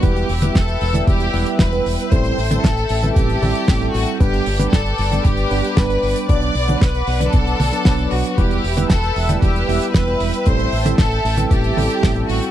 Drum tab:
HH |xxoxxxoxxxoxxxox|xxoxxxoxxxoxoxox|xxoxxxoxxxoxxxox|xxoxxxoxxxoxoxox|
SD |----o-------o---|----o-------o---|----o-------o---|----o-------o---|
T1 |---o---o--------|---o---o--o-----|---o---o--------|---o---o--o-----|
BD |o---o---o---o---|o---o---o---o---|o---o---o---o---|o---o---o---o---|

HH |xxoxxxoxxxoxxxox|xxoxxxoxxxoxoxox|
SD |----o-------o---|----o-------o---|
T1 |---o---o--------|---o---o--o-----|
BD |o---o---o---o---|o---o---o---o---|